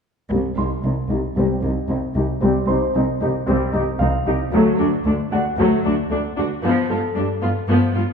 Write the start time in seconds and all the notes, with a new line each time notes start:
0.31 C2 G3 C4
0.58 C2 D#4 G4 C6
0.84 C2 C4 D#4
1.10 C2 D#4 G4
1.36 C2 G3 C4
1.63 C2 D#4 G4
1.89 C2 C4 D#4
2.15 C2 D#4 G4
2.42 C2 G3 C4
2.67 C2 D#4 G4 C5 C6
2.95 C2 C4 D#4
3.21 C2 D#4 G4
3.47 C2 G3 C4
3.73 C2 D#4 G4
3.99 C2 C4 D#4 F5
4.26 C2 D#4 G4
4.53 D2 F#3 A3
4.78 D2 D4 F#4
5.05 D2 A3 D4
5.31 D2 D4 F#4 F#5
5.58 D2 F#3 A3
5.84 D2 D4 F#4
6.10 D2 A3 D4
6.37 D2 D4 F#4
6.63 G2 F3 B3
6.90 G2 B3 F4 A4 A5
7.15 G2 G3 D4
7.42 G2 B3 F4
7.68 G2 F3 B3
7.94 G2 B3 F4